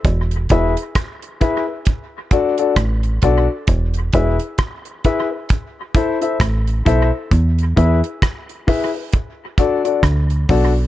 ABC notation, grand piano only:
X:1
M:4/4
L:1/16
Q:"Swing 16ths" 1/4=66
K:Emix
V:1 name="Grand piano"
z2 [EGBe] z3 [EGBe] [Be] z2 [DFAd] [DFAd] z2 [DFAd] z | z2 [EGBe] z3 [EGBe] [Be] z2 [EA=ce] [EAce] z2 [EAce] z | z2 [EGBe] z3 [EGBe] [Be] z2 [DFAd] [DFAd] z2 [DFAd] z |]